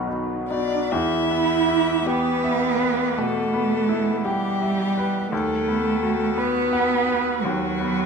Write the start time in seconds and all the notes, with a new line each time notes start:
Already playing: B1 B2 D#3 B3 D#4 F#4
0.07 B3 D#4 F#4
0.50 B3 D4 D#4 F#4 D5
0.92 E2 E4 E5
1.31 B3
1.68 E4
2.06 B3 G4 B4
2.44 E5
2.82 B4
3.17 B2 A3 A4
3.54 B3
3.89 E4
4.25 G3 G4
4.62 E5
4.98 B4
5.31 D#2 A3 A4
5.68 B3
6.03 F#4
6.37 B3 B4
6.73 F#5
7.08 B4
7.42 D#2 F#3 F#4
7.80 B3